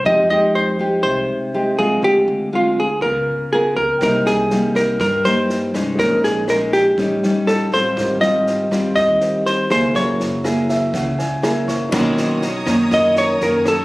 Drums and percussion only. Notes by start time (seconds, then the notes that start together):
4.01 kick, cross-stick, snare
4.26 snare
4.50 snare
4.75 kick, cross-stick, snare
5.00 kick, snare
5.25 snare
5.50 snare
5.74 kick, cross-stick, snare
5.99 kick, snare
6.24 snare
6.48 cross-stick, snare
6.73 kick, snare
6.98 kick, snare
7.23 snare
7.48 cross-stick, snare
7.72 kick, snare
7.97 kick, cross-stick, snare
8.22 snare
8.47 snare
8.71 kick, cross-stick, snare
8.96 kick, snare
9.21 snare
9.46 snare
9.70 kick, cross-stick, snare
9.95 kick, snare
10.20 snare
10.45 cross-stick, snare
10.69 kick, snare
10.94 kick, snare
11.19 snare
11.43 cross-stick, snare
11.68 kick, snare
11.92 kick, cross-stick, snare, crash
12.17 snare
12.42 snare
12.66 kick, cross-stick, snare
12.91 kick, snare
13.16 snare
13.41 snare
13.65 kick, cross-stick, snare